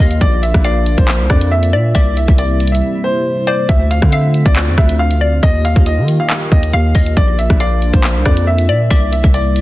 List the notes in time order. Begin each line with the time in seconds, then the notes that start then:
Already playing: D#3 A#3 F4 G4 F5
0.00 D#2 D#5
0.11 closed hi-hat
0.21 A#1 D4 D5, kick, closed hi-hat
0.43 E5, closed hi-hat
0.54 A#1, kick, cross-stick
0.64 D5 F5, closed hi-hat
0.86 closed hi-hat
0.98 A#1 C5, kick, closed hi-hat
1.08 clap
1.20 C2
1.30 F2 D5, kick, cross-stick
1.41 closed hi-hat
1.52 E5
1.63 closed hi-hat
1.73 A#2 D5
1.95 C2 C3 G3 E4 D5 E5, kick, closed hi-hat
2.17 E5, closed hi-hat
2.28 C2, kick
2.38 D5, closed hi-hat
2.60 closed hi-hat
2.67 closed hi-hat
2.72 E5, closed hi-hat
3.04 C5
3.47 C5 D5
3.69 D2 D3 A3 C4 F4 E5, kick, closed hi-hat
3.91 F5, closed hi-hat
4.02 D3, kick, cross-stick
4.12 E5 F5, closed hi-hat
4.34 closed hi-hat
4.46 D2 D5, kick, closed hi-hat
4.56 clap
4.67 F2
4.78 D2 E5, kick, cross-stick
4.89 closed hi-hat
4.99 F5
5.11 closed hi-hat
5.21 D5
5.43 D#2 D#3 A#3 G4 D#5, kick, closed hi-hat
5.65 F5, closed hi-hat
5.76 D#2, kick
5.86 D#5, closed hi-hat
5.98 D#3
6.08 closed hi-hat
6.20 F5
6.30 clap
6.52 D#2 D#5, kick
6.63 closed hi-hat
6.73 D#2 F5
6.95 D#2 D#5, kick, open hi-hat
7.06 closed hi-hat
7.17 A#1 D4 F4 D5, kick, closed hi-hat
7.39 E5, closed hi-hat
7.50 A#1, kick, cross-stick
7.60 D5 F5, closed hi-hat
7.82 closed hi-hat
7.93 A#1 C5, kick, closed hi-hat
8.04 clap
8.15 C2
8.25 F2 D5, kick, cross-stick
8.37 closed hi-hat
8.47 E5
8.58 closed hi-hat
8.69 A#2 D5
8.90 C2 C3 G3 E4 D5 E5, kick, closed hi-hat
9.12 E5, closed hi-hat
9.24 C2, kick
9.34 D5, closed hi-hat
9.56 closed hi-hat